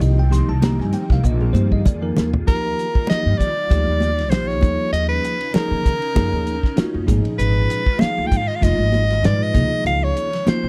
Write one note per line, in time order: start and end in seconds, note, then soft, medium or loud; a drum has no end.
0.00 0.39 C2 loud
0.00 1.21 D#3 medium
0.00 0.19 F3 medium
0.00 0.20 A#3 medium
0.00 2.43 A#3 medium
0.00 1.21 C4 medium
0.00 0.20 D#4 medium
0.00 1.21 D#4 loud
0.00 0.20 G4 medium
0.00 0.17 D#5 medium
0.00 hi-hat pedal medium
0.00 ride medium
0.00 muted conga soft
0.19 0.32 G5 medium
0.30 0.51 F3 medium
0.30 0.51 A#3 medium
0.30 0.51 D#4 medium
0.30 0.52 G4 medium
0.30 0.48 C6 loud
0.30 snare soft
0.30 hi-hat pedal medium
0.30 ride medium
0.30 muted conga soft
0.48 0.74 C2 medium
0.48 0.62 A5 medium
0.61 1.20 F3 medium
0.61 1.20 A#3 medium
0.61 1.21 D#4 medium
0.61 1.21 G4 medium
0.61 0.79 A#5 medium
0.61 snare loud
0.61 hi-hat pedal medium
0.61 ride medium
0.61 high conga medium
0.79 0.91 G2 medium
0.79 0.94 G#5 medium
0.79 snare soft
0.93 1.09 G5 medium
0.93 hi-hat pedal medium
0.93 ride medium
0.93 high conga medium
1.10 1.21 C2 medium
1.10 1.24 F5 medium
1.10 kick medium
1.10 snare soft
1.23 1.49 A#1 loud
1.23 2.44 D#3 medium
1.23 2.43 F4 medium
1.23 2.45 G#4 medium
1.23 1.41 D#5 medium
1.23 kick medium
1.23 hi-hat pedal medium
1.23 muted conga soft
1.41 1.55 G#4 medium
1.41 high tom medium
1.53 1.81 G2 medium
1.53 1.83 F3 medium
1.53 1.83 A#3 medium
1.53 1.83 D#4 medium
1.53 1.83 G4 medium
1.53 1.70 C5 medium
1.53 hi-hat pedal medium
1.53 high conga medium
1.72 1.85 D#5 medium
1.72 kick medium
1.85 2.13 F2 medium
1.85 2.04 D5 medium
1.85 kick medium
1.85 hi-hat pedal medium
1.85 muted conga soft
1.85 low conga medium
2.01 2.30 F3 medium
2.01 2.30 A#3 medium
2.01 2.31 D#4 medium
2.01 2.31 A#4 medium
2.17 2.44 D#2 medium
2.17 snare medium
2.17 hi-hat pedal medium
2.17 high conga medium
2.17 low conga medium
2.34 floor tom medium
2.44 2.73 D#2 medium
2.44 4.59 D#3 medium
2.44 2.86 F3 medium
2.44 4.59 G3 medium
2.44 2.86 A#3 medium
2.44 4.59 D#4 medium
2.44 2.86 D#4 medium
2.44 4.58 F4 medium
2.44 2.86 G4 medium
2.44 3.04 A#4 medium
2.44 kick loud
2.44 hi-hat pedal medium
2.44 ride medium
2.44 muted conga soft
2.79 hi-hat pedal medium
2.79 ride medium
2.95 kick medium
3.07 3.47 F3 medium
3.07 3.47 A#3 medium
3.07 3.48 D#4 medium
3.07 3.48 G4 medium
3.07 3.39 D#5 medium
3.07 muted upright bass stroke soft
3.07 snare medium
3.07 hi-hat pedal medium
3.07 ride medium
3.07 high conga medium
3.26 3.37 G2 medium
3.38 3.53 D#3 medium
3.38 4.31 D5 medium
3.38 kick medium
3.38 hi-hat pedal medium
3.38 ride medium
3.70 3.84 D2 medium
3.70 4.09 F3 medium
3.70 4.09 A#3 medium
3.70 4.09 D#4 medium
3.70 4.09 G4 medium
3.70 kick medium
3.70 hi-hat pedal medium
3.70 ride medium
3.70 muted conga soft
3.87 4.31 D#2 medium
4.00 hi-hat pedal medium
4.00 ride medium
4.00 muted conga soft
4.00 high conga medium
4.18 snare soft
4.18 ride medium
4.30 4.62 A#1 medium
4.30 4.60 F3 medium
4.30 4.60 A#3 medium
4.30 4.61 D#4 medium
4.30 4.62 G4 medium
4.30 4.49 C5 medium
4.30 snare loud
4.30 hi-hat pedal medium
4.30 ride medium
4.47 4.92 C#5 medium
4.47 snare soft
4.61 4.76 D#2 medium
4.61 7.06 C#3 medium
4.61 5.36 F3 medium
4.61 5.36 A#3 medium
4.61 7.06 C#4 medium
4.61 5.37 D#4 medium
4.61 7.06 D#4 medium
4.61 5.37 G#4 medium
4.61 kick medium
4.61 hi-hat pedal medium
4.61 ride soft
4.61 muted conga soft
4.61 high conga medium
4.92 5.18 D#2 medium
4.92 5.08 D#5 medium
4.92 hi-hat pedal medium
4.92 ride medium
4.92 muted conga soft
5.08 5.55 B4 medium
5.24 hi-hat pedal medium
5.24 ride medium
5.41 ride medium
5.53 5.93 F3 medium
5.53 5.94 A#3 medium
5.53 5.94 D#4 medium
5.53 5.94 G#4 medium
5.53 7.08 A#4 medium
5.53 muted upright bass stroke soft
5.53 snare medium
5.53 hi-hat pedal medium
5.53 ride medium
5.53 high conga medium
5.71 5.83 D#3 medium
5.85 5.99 D#3 medium
5.85 kick medium
5.85 hi-hat pedal medium
5.85 ride medium
6.02 ride medium
6.15 6.29 F#2 medium
6.15 6.55 F3 medium
6.15 6.55 A#3 medium
6.15 6.55 D#4 medium
6.15 6.55 G#4 medium
6.15 kick medium
6.15 hi-hat pedal medium
6.15 ride medium
6.15 muted conga soft
6.15 high conga medium
6.15 low conga medium
6.32 6.58 D#2 medium
6.47 hi-hat pedal medium
6.47 ride medium
6.47 muted conga soft
6.63 kick medium
6.63 snare soft
6.76 7.07 A#3 medium
6.76 7.06 D#4 medium
6.76 7.08 F4 medium
6.76 7.08 F#4 medium
6.76 muted upright bass stroke soft
6.76 snare loud
6.76 hi-hat pedal medium
6.76 ride medium
6.76 high conga medium
6.94 7.06 F#2 medium
7.06 7.22 G#1 medium
7.06 7.82 A#2 medium
7.06 9.51 D#3 medium
7.06 7.82 F3 medium
7.06 9.52 G#3 medium
7.06 7.82 D#4 medium
7.06 9.52 F4 medium
7.06 7.83 G#4 loud
7.06 kick medium
7.06 hi-hat pedal medium
7.06 ride medium
7.06 muted conga soft
7.06 high conga medium
7.25 muted upright bass stroke soft
7.25 ride medium
7.38 7.64 G#1 medium
7.38 8.01 B4 medium
7.38 hi-hat pedal medium
7.38 ride medium
7.38 muted conga soft
7.70 hi-hat pedal medium
7.70 ride medium
7.86 kick medium
7.99 8.39 F3 medium
7.99 8.39 A#3 medium
7.99 8.40 D#4 medium
7.99 8.40 G#4 medium
7.99 8.28 F5 medium
7.99 muted upright bass stroke soft
7.99 snare medium
7.99 hi-hat pedal medium
7.99 ride medium
7.99 high conga medium
8.18 8.29 D2 medium
8.26 8.38 G5 medium
8.31 8.45 G#2 medium
8.31 kick medium
8.31 hi-hat pedal medium
8.31 ride soft
8.36 8.49 F5 medium
8.47 8.57 D#5 medium
8.55 8.64 F5 medium
8.61 8.76 F1 loud
8.61 9.01 F3 medium
8.61 9.01 A#3 medium
8.61 9.01 D#4 medium
8.61 9.01 F4 medium
8.61 9.27 D#5 loud
8.61 kick medium
8.61 hi-hat pedal medium
8.61 ride medium
8.61 muted conga soft
8.78 9.24 G#1 medium
8.92 hi-hat pedal medium
8.92 ride medium
8.92 muted conga soft
8.92 high conga medium
9.10 snare soft
9.10 ride soft
9.23 9.55 G#2 medium
9.23 9.54 A#2 medium
9.23 9.53 F3 medium
9.23 9.54 D#4 medium
9.23 9.55 B4 medium
9.23 9.44 D5 medium
9.23 snare loud
9.23 hi-hat pedal medium
9.23 ride medium
9.42 9.86 D#5 medium
9.42 snare soft
9.52 9.68 C#2 medium
9.52 10.69 C3 medium
9.52 10.69 C#3 medium
9.52 10.69 D#3 medium
9.52 10.69 F3 medium
9.52 10.29 F3 medium
9.52 10.29 A#3 medium
9.52 10.29 D#4 medium
9.52 10.30 G#4 medium
9.52 kick medium
9.52 hi-hat pedal medium
9.52 ride medium
9.52 muted conga soft
9.52 high conga medium
9.85 10.10 C#2 medium
9.85 10.05 F5 medium
9.85 hi-hat pedal medium
9.85 ride medium
9.85 muted conga soft
10.04 10.49 C#5 medium
10.17 hi-hat pedal medium
10.17 ride medium
10.33 snare soft
10.33 ride medium
10.46 10.69 F3 medium
10.46 10.69 A#3 medium
10.46 10.69 D#4 medium
10.46 10.69 F4 medium
10.46 10.69 C5 medium
10.46 muted upright bass stroke soft
10.46 snare loud
10.46 hi-hat pedal medium
10.46 ride medium
10.46 high conga medium
10.63 10.69 C#3 medium